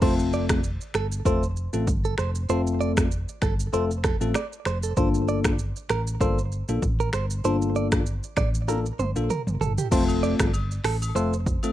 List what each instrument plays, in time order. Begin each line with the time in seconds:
0.01 fingered electric bass F1, tine electric piano A3 C4 F4 A4, clean electric guitar C5, kick, crash
0.19 shaker
0.33 clean electric guitar D5, shaker
0.49 finger snap, kick, cross-stick, shaker
0.64 shaker
0.81 shaker
0.94 fingered electric bass G1, clean electric guitar A4, finger snap, cross-stick, shaker
1.12 shaker
1.25 fingered electric bass F1, tine electric piano A3 C4 F4 A4, clean electric guitar C5, kick, shaker
1.43 shaker
1.57 shaker
1.73 fingered electric bass A1, tine electric piano A3 C4 F4 A4, shaker
1.87 fingered electric bass G1, kick, shaker
2.05 clean electric guitar A4, shaker
2.18 fingered electric bass F1, clean electric guitar C5, finger snap, cross-stick, shaker
2.35 shaker
2.49 fingered electric bass F1, tine electric piano A3 C4 F4 A4, clean electric guitar C5, shaker
2.67 shaker
2.81 clean electric guitar D5, shaker
2.97 finger snap, kick, cross-stick, shaker
3.11 shaker
3.29 shaker
3.42 fingered electric bass G1, clean electric guitar A4, finger snap, kick, cross-stick, shaker
3.60 shaker
3.73 fingered electric bass F1, tine electric piano A3 C4 F4 A4, clean electric guitar C5, shaker
3.91 shaker
4.04 clean electric guitar A4, finger snap, kick, cross-stick, shaker
4.21 fingered electric bass A1, tine electric piano A3 C4 F4 A4, shaker
4.34 clean electric guitar D5, finger snap, cross-stick, shaker
4.53 shaker
4.65 fingered electric bass F1, clean electric guitar C5, finger snap, cross-stick, shaker
4.83 clean electric guitar A4, shaker
4.97 fingered electric bass G1, tine electric piano A#3 D4 F4 A4, clean electric guitar C5, kick, shaker
5.14 shaker
5.28 clean electric guitar D5, shaker
5.44 finger snap, kick, cross-stick, shaker
5.59 shaker
5.76 shaker
5.89 fingered electric bass A1, clean electric guitar A#4, finger snap, cross-stick, shaker
6.07 shaker
6.21 fingered electric bass G1, tine electric piano A#3 D4 F4 A4, clean electric guitar C5, kick, shaker
6.38 shaker
6.52 shaker
6.68 fingered electric bass A#1, tine electric piano A#3 D4 F4 A4, shaker
6.82 fingered electric bass A1, kick, shaker
7.00 clean electric guitar A#4, shaker
7.13 fingered electric bass G1, clean electric guitar C5, finger snap, cross-stick, shaker
7.30 shaker
7.44 fingered electric bass G1, tine electric piano A#3 D4 F4 A4, clean electric guitar C5, shaker
7.62 shaker
7.76 clean electric guitar D5, shaker
7.92 finger snap, kick, cross-stick, shaker
8.06 shaker
8.23 shaker
8.37 fingered electric bass A1, clean electric guitar D5, finger snap, kick, cross-stick, shaker
8.55 shaker
8.68 tine electric piano A#3 D4 F4 A4, clean electric guitar A#4, high tom, shaker
8.86 shaker
8.99 fingered electric bass G1, clean electric guitar C5, mid tom, shaker
9.16 fingered electric bass A#1, tine electric piano A#3 D4 F4 A4, shaker
9.30 clean electric guitar A#4, mid tom, shaker
9.47 fingered electric bass G1, mid tom, shaker
9.61 fingered electric bass G1, clean electric guitar A4, floor tom, shaker
9.78 clean electric guitar G4, floor tom, shaker
9.91 fingered electric bass F1, tine electric piano A3 C4 F4 A4, clean electric guitar C5, kick, crash, shaker
10.08 high agogo, shaker
10.23 clean electric guitar D5, shaker
10.39 fingered electric bass G1, finger snap, kick, cross-stick, shaker
10.54 high agogo, shaker
10.71 shaker
10.84 fingered electric bass A1, clean electric guitar A4, finger snap, cross-stick, open hi-hat, shaker
11.02 high agogo, shaker
11.15 fingered electric bass F1, tine electric piano A3 C4 F4 A4, clean electric guitar C5, shaker
11.33 shaker
11.46 kick, shaker
11.63 tine electric piano A3 C4 F4 A4, high agogo, shaker